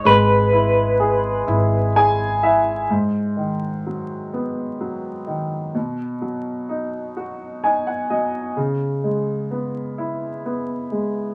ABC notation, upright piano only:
X:1
M:6/8
L:1/16
Q:3/8=42
K:G#m
V:1 name="Upright piano"
z8 g2 e2 | z12 | z8 g f d2 | z12 |]
V:2 name="Upright piano"
G,2 E2 G2 E2 G2 E2 | G,,2 D,2 F,2 B,2 F,2 D,2 | B,,2 F,2 D2 F2 D2 F,2 | C,2 G,2 B,2 E2 B,2 G,2 |]